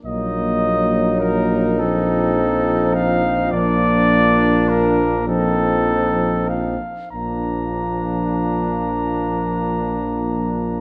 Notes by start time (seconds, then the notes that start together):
0.05 A#1 F#3 A#3 D#4 D#5
1.20 A#4
1.79 F3 C4 A4
2.94 F5
3.52 A#1 A#3 D4 D5
4.69 A#4
5.27 F3 C4 D#4 A4
6.49 F5
7.11 A#1 F3 A#3 D4 A#5